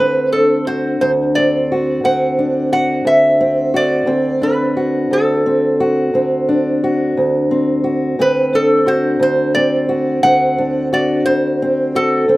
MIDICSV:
0, 0, Header, 1, 3, 480
1, 0, Start_track
1, 0, Tempo, 684151
1, 2864, Time_signature, 12, 3, 24, 8
1, 8679, End_track
2, 0, Start_track
2, 0, Title_t, "Resonator guitar played with a steel bar"
2, 0, Program_c, 0, 25
2, 0, Note_on_c, 0, 71, 92
2, 225, Note_off_c, 0, 71, 0
2, 228, Note_on_c, 0, 69, 71
2, 471, Note_on_c, 0, 72, 84
2, 475, Note_off_c, 0, 69, 0
2, 701, Note_off_c, 0, 72, 0
2, 710, Note_on_c, 0, 72, 82
2, 774, Note_off_c, 0, 72, 0
2, 949, Note_on_c, 0, 74, 96
2, 1399, Note_off_c, 0, 74, 0
2, 1437, Note_on_c, 0, 78, 92
2, 1905, Note_off_c, 0, 78, 0
2, 1914, Note_on_c, 0, 78, 85
2, 2151, Note_off_c, 0, 78, 0
2, 2154, Note_on_c, 0, 76, 98
2, 2638, Note_off_c, 0, 76, 0
2, 2640, Note_on_c, 0, 74, 93
2, 3110, Note_on_c, 0, 71, 74
2, 3126, Note_off_c, 0, 74, 0
2, 3599, Note_on_c, 0, 69, 77
2, 3601, Note_off_c, 0, 71, 0
2, 5003, Note_off_c, 0, 69, 0
2, 5763, Note_on_c, 0, 71, 96
2, 5999, Note_on_c, 0, 69, 78
2, 6000, Note_off_c, 0, 71, 0
2, 6230, Note_on_c, 0, 72, 85
2, 6238, Note_off_c, 0, 69, 0
2, 6464, Note_off_c, 0, 72, 0
2, 6473, Note_on_c, 0, 72, 87
2, 6694, Note_off_c, 0, 72, 0
2, 6697, Note_on_c, 0, 74, 97
2, 7178, Note_on_c, 0, 78, 101
2, 7196, Note_off_c, 0, 74, 0
2, 7634, Note_off_c, 0, 78, 0
2, 7673, Note_on_c, 0, 74, 82
2, 7894, Note_off_c, 0, 74, 0
2, 7897, Note_on_c, 0, 72, 97
2, 8391, Note_on_c, 0, 69, 91
2, 8397, Note_off_c, 0, 72, 0
2, 8679, Note_off_c, 0, 69, 0
2, 8679, End_track
3, 0, Start_track
3, 0, Title_t, "Steel-string acoustic guitar"
3, 0, Program_c, 1, 25
3, 0, Note_on_c, 1, 38, 66
3, 0, Note_on_c, 1, 60, 55
3, 228, Note_on_c, 1, 62, 50
3, 474, Note_on_c, 1, 66, 63
3, 707, Note_off_c, 1, 38, 0
3, 709, Note_on_c, 1, 38, 72
3, 961, Note_off_c, 1, 60, 0
3, 964, Note_on_c, 1, 60, 58
3, 1202, Note_off_c, 1, 66, 0
3, 1205, Note_on_c, 1, 66, 56
3, 1428, Note_off_c, 1, 38, 0
3, 1430, Note_on_c, 1, 38, 66
3, 1435, Note_off_c, 1, 60, 0
3, 1438, Note_on_c, 1, 60, 57
3, 1672, Note_off_c, 1, 62, 0
3, 1675, Note_on_c, 1, 62, 54
3, 1908, Note_off_c, 1, 66, 0
3, 1911, Note_on_c, 1, 66, 65
3, 2137, Note_off_c, 1, 38, 0
3, 2139, Note_on_c, 1, 38, 69
3, 2387, Note_off_c, 1, 60, 0
3, 2389, Note_on_c, 1, 60, 58
3, 2621, Note_off_c, 1, 66, 0
3, 2624, Note_on_c, 1, 66, 59
3, 2845, Note_off_c, 1, 38, 0
3, 2848, Note_on_c, 1, 38, 69
3, 2854, Note_off_c, 1, 60, 0
3, 2857, Note_on_c, 1, 60, 59
3, 2878, Note_off_c, 1, 62, 0
3, 2878, Note_off_c, 1, 66, 0
3, 3099, Note_on_c, 1, 62, 54
3, 3344, Note_on_c, 1, 66, 54
3, 3582, Note_off_c, 1, 38, 0
3, 3585, Note_on_c, 1, 38, 73
3, 3828, Note_off_c, 1, 60, 0
3, 3831, Note_on_c, 1, 60, 59
3, 4069, Note_off_c, 1, 66, 0
3, 4071, Note_on_c, 1, 66, 62
3, 4303, Note_off_c, 1, 38, 0
3, 4306, Note_on_c, 1, 38, 64
3, 4310, Note_off_c, 1, 60, 0
3, 4313, Note_on_c, 1, 60, 57
3, 4548, Note_off_c, 1, 62, 0
3, 4551, Note_on_c, 1, 62, 58
3, 4794, Note_off_c, 1, 66, 0
3, 4797, Note_on_c, 1, 66, 59
3, 5030, Note_off_c, 1, 38, 0
3, 5033, Note_on_c, 1, 38, 71
3, 5266, Note_off_c, 1, 60, 0
3, 5269, Note_on_c, 1, 60, 55
3, 5497, Note_off_c, 1, 66, 0
3, 5500, Note_on_c, 1, 66, 57
3, 5743, Note_off_c, 1, 38, 0
3, 5745, Note_on_c, 1, 38, 67
3, 5747, Note_off_c, 1, 60, 0
3, 5750, Note_on_c, 1, 60, 60
3, 5769, Note_off_c, 1, 62, 0
3, 5769, Note_off_c, 1, 66, 0
3, 5988, Note_on_c, 1, 62, 58
3, 6221, Note_on_c, 1, 66, 58
3, 6449, Note_off_c, 1, 38, 0
3, 6452, Note_on_c, 1, 38, 72
3, 6705, Note_off_c, 1, 60, 0
3, 6708, Note_on_c, 1, 60, 61
3, 6935, Note_off_c, 1, 66, 0
3, 6938, Note_on_c, 1, 66, 59
3, 7177, Note_off_c, 1, 38, 0
3, 7179, Note_on_c, 1, 38, 66
3, 7183, Note_off_c, 1, 60, 0
3, 7186, Note_on_c, 1, 60, 57
3, 7423, Note_off_c, 1, 62, 0
3, 7426, Note_on_c, 1, 62, 60
3, 7658, Note_off_c, 1, 66, 0
3, 7666, Note_on_c, 1, 66, 66
3, 7898, Note_off_c, 1, 38, 0
3, 7907, Note_on_c, 1, 38, 66
3, 8147, Note_off_c, 1, 60, 0
3, 8154, Note_on_c, 1, 60, 57
3, 8378, Note_off_c, 1, 66, 0
3, 8386, Note_on_c, 1, 66, 65
3, 8598, Note_off_c, 1, 66, 0
3, 8602, Note_off_c, 1, 60, 0
3, 8608, Note_off_c, 1, 38, 0
3, 8616, Note_on_c, 1, 38, 68
3, 8623, Note_on_c, 1, 60, 57
3, 8644, Note_off_c, 1, 62, 0
3, 8679, Note_off_c, 1, 38, 0
3, 8679, Note_off_c, 1, 60, 0
3, 8679, End_track
0, 0, End_of_file